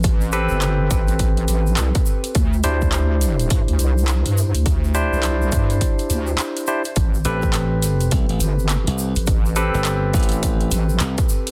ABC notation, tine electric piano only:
X:1
M:4/4
L:1/8
Q:"Swing 16ths" 1/4=104
K:Am
V:1 name="Tine electric piano"
[CGAB] [CGAB]6- [CGAB] | z [DEGc]6- [DEGc]- | [DEGc] [DEGc]6 [DEGc] | z [CGAB]6- [CGAB]- |
[CGAB] [CGAB]6- [CGAB] |]